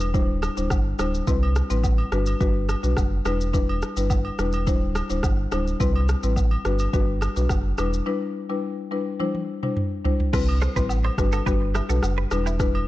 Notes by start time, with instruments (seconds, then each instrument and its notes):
Already playing: sub bass E1
0.00 high agogo, shaker
0.14 sub bass D1, marimba G3 D4 E4 C5, kick, shaker
0.42 cross-stick, high agogo, shaker
0.57 sub bass D1, marimba G3 D4 E4 C5, shaker
0.70 sub bass G1, kick, cross-stick, low woodblock, shaker
0.99 sub bass D1, marimba G3 D4 E4 C5, cross-stick, high agogo, shaker
1.14 shaker
1.27 sub bass C2, marimba G3 C4 E4 B4, kick, shaker
1.43 high agogo
1.55 cross-stick, shaker
1.70 sub bass A1, marimba G3 C4 E4 B4, shaker
1.84 kick, low woodblock, shaker
1.98 high agogo
2.12 sub bass G1, marimba G3 D4 F#4 B4, cross-stick, shaker
2.26 high agogo, shaker
2.40 sub bass G1, marimba G3 D4 F#4 B4, kick, shaker
2.69 cross-stick, high agogo, shaker
2.83 sub bass B1, marimba G3 D4 F#4 B4, shaker
2.97 sub bass F#1, kick, cross-stick, low woodblock, shaker
3.25 sub bass E1, marimba G3 D4 E4 B4, cross-stick, high agogo, shaker
3.41 shaker
3.53 marimba G3 D4 E4 B4, kick, shaker
3.69 high agogo
3.82 cross-stick, shaker
3.97 sub bass G1, marimba G3 D4 E4 B4, shaker
4.10 kick, low woodblock, shaker
4.25 high agogo
4.39 sub bass E1, marimba G3 D4 E4 B4, cross-stick, shaker
4.52 high agogo, shaker
4.67 sub bass D1, marimba G3 D4 E4 C5, kick, shaker
4.95 cross-stick, high agogo, shaker
5.10 sub bass D1, marimba G3 D4 E4 C5, shaker
5.23 sub bass G1, kick, cross-stick, low woodblock, shaker
5.52 sub bass D1, marimba G3 D4 E4 C5, cross-stick, high agogo, shaker
5.67 shaker
5.80 sub bass C2, marimba G3 C4 E4 B4, kick, shaker
5.96 high agogo
6.08 cross-stick, shaker
6.23 sub bass A1, marimba G3 C4 E4 B4, shaker
6.36 kick, low woodblock, shaker
6.51 high agogo
6.65 sub bass G1, marimba G3 D4 F#4 B4, cross-stick, shaker
6.79 high agogo, shaker
6.93 sub bass G1, marimba G3 D4 F#4 B4, kick, shaker
7.21 cross-stick, high agogo, shaker
7.36 sub bass B1, marimba G3 D4 F#4 B4, shaker
7.49 sub bass F#1, kick, cross-stick, low woodblock, shaker
7.78 sub bass E1, marimba G3 D4 E4 B4, cross-stick, high agogo, shaker
7.93 shaker
8.06 marimba G3 D4 E4 B4
8.49 marimba G3 D4 E4 B4
8.91 marimba G3 D4 E4 B4
9.20 marimba G3 D4 E4 C5, high tom
9.35 high tom
9.63 marimba G3 D4 E4 C5, mid tom
9.77 mid tom
10.05 marimba G3 D4 E4 C5, floor tom
10.20 floor tom
10.33 sub bass C2, marimba G3 C4 E4 B4, kick, cross-stick, crash, shaker
10.49 high agogo
10.62 clean electric guitar A4 C5, cross-stick, shaker
10.76 sub bass A1, marimba G3 C4 E4 B4, clean electric guitar G4 B4, kick, shaker
10.89 low woodblock, shaker
11.04 clean electric guitar A4 C5, high agogo
11.18 sub bass G1, marimba G3 D4 F#4 B4, kick, cross-stick, shaker
11.32 clean electric guitar F#4 A4, high agogo, shaker
11.46 sub bass G1, marimba G3 D4 F#4 B4, clean electric guitar G4 B4, kick, shaker
11.74 clean electric guitar E4 G4, cross-stick, high agogo, shaker
11.89 sub bass B1, marimba G3 D4 F#4 B4, clean electric guitar F#4 A4, shaker
12.03 sub bass F#1, cross-stick, low woodblock, shaker
12.18 clean electric guitar G4 B4
12.31 sub bass E1, marimba G3 D4 E4 B4, cross-stick, high agogo, shaker
12.46 clean electric guitar E4 G4, shaker
12.59 marimba G3 D4 E4 B4, kick, cross-stick, shaker
12.75 high agogo